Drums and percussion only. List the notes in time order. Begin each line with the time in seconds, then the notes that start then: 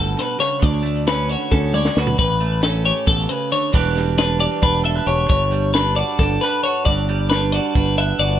0.18 snare, closed hi-hat
0.40 snare, closed hi-hat
0.63 kick, closed hi-hat
0.86 closed hi-hat
1.07 snare, closed hi-hat
1.30 closed hi-hat
1.52 kick, high tom
1.74 mid tom
1.85 snare
1.97 snare
2.07 floor tom
2.19 kick, closed hi-hat
2.41 closed hi-hat
2.63 snare, closed hi-hat
2.86 closed hi-hat
3.07 kick, closed hi-hat
3.30 closed hi-hat
3.52 closed hi-hat
3.74 kick, closed hi-hat
3.97 snare, closed hi-hat
4.19 snare, closed hi-hat
4.40 closed hi-hat
4.63 kick, closed hi-hat
4.85 closed hi-hat
5.08 closed hi-hat
5.30 kick, closed hi-hat
5.53 closed hi-hat
5.75 snare, closed hi-hat
5.97 closed hi-hat
6.19 kick, snare, closed hi-hat
6.43 snare, closed hi-hat
6.64 closed hi-hat
6.86 kick, closed hi-hat
7.09 closed hi-hat
7.31 snare, closed hi-hat
7.54 closed hi-hat
7.75 kick, closed hi-hat
7.98 closed hi-hat
8.20 closed hi-hat